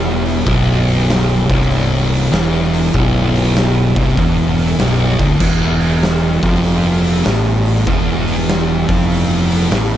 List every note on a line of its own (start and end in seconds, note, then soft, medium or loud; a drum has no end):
0.00 0.43 E1 loud
0.00 0.45 E2 loud
0.00 9.97 B3 medium
0.00 0.42 F#4 medium
0.00 5.37 C#5 loud
0.26 open hi-hat medium
0.45 1.45 B0 loud
0.45 1.47 B1 loud
0.45 5.37 E4 medium
0.45 kick loud
0.45 open hi-hat medium
0.88 open hi-hat medium
1.09 snare loud
1.09 open hi-hat medium
1.48 2.28 C1 loud
1.48 2.31 C2 loud
1.48 kick loud
1.48 open hi-hat medium
1.61 snare soft
1.71 open hi-hat medium
2.12 open hi-hat medium
2.31 2.90 E1 medium
2.31 2.93 E2 loud
2.31 snare loud
2.31 open hi-hat medium
2.74 open hi-hat medium
2.94 3.93 B0 medium
2.94 3.95 B1 loud
2.94 kick loud
2.94 open hi-hat medium
3.35 open hi-hat medium
3.56 snare loud
3.56 open hi-hat medium
3.96 4.16 C1 loud
3.96 4.17 C2 medium
3.96 kick loud
3.96 open hi-hat medium
4.08 snare soft
4.17 4.75 E1 loud
4.17 4.78 E2 loud
4.17 kick loud
4.17 open hi-hat medium
4.58 open hi-hat medium
4.79 5.17 B0 medium
4.79 5.18 B1 loud
4.79 snare loud
4.79 open hi-hat medium
5.19 5.39 D1 medium
5.19 5.40 D2 loud
5.19 kick loud
5.19 open hi-hat medium
5.40 6.39 E1 loud
5.40 6.42 E2 loud
5.40 9.97 E3 medium
5.40 7.84 F#4 medium
5.40 kick loud
5.40 crash loud
5.81 open hi-hat medium
6.02 snare loud
6.02 open hi-hat medium
6.43 7.21 F1 medium
6.43 7.25 F2 medium
6.43 kick loud
6.43 open hi-hat medium
6.55 snare soft
6.64 open hi-hat medium
7.04 open hi-hat soft
7.25 7.83 A1 loud
7.25 7.86 A2 loud
7.25 snare loud
7.25 open hi-hat medium
7.66 open hi-hat medium
7.87 8.85 E1 loud
7.87 8.89 E2 loud
7.87 9.97 E4 loud
7.87 kick loud
7.87 open hi-hat medium
8.28 open hi-hat medium
8.49 snare loud
8.49 open hi-hat medium
8.89 9.67 F1 loud
8.89 9.70 F2 medium
8.89 kick loud
8.89 open hi-hat medium
9.01 snare soft
9.10 open hi-hat medium
9.51 open hi-hat medium
9.71 9.97 A1 loud
9.71 9.97 A2 loud
9.71 snare loud
9.71 open hi-hat medium